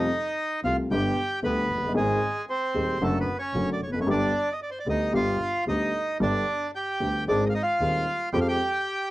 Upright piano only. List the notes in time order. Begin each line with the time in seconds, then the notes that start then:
0.64 C2 C3 G3 A3 F4
0.91 G1 G2 D3 G3 B3 G4
1.43 D2 D3 G3 B3 G4
1.75 F1
1.82 F#1
1.88 G1
1.94 G#1 G#2 D#3 G#3 C4 G#4
2.74 D#1 D#2 D#3 G#3 C4 G#4
3.01 F#2 D3 F#3 A3 F#4
3.54 F#2 D3 F#3 A3 F#4
3.87 E2
3.94 F2
4.00 F#2
4.07 G1 G2 D3 G3 B3 G4
4.86 D2 D3 G3 B3 G4
5.13 G1 G2 D3 G3 B3 G4
5.67 D2 D3 G3 B3 G4
6.20 G1 G2 D3 G3 B3 G4
7.00 D2 D3 G3 B3 G4
7.28 G#1 G#2 D#3 G#3 C4 G#4
7.81 D#1 D#2 D#3 G#3 C4 G#4
8.33 F2 F3 G#3 C4 G4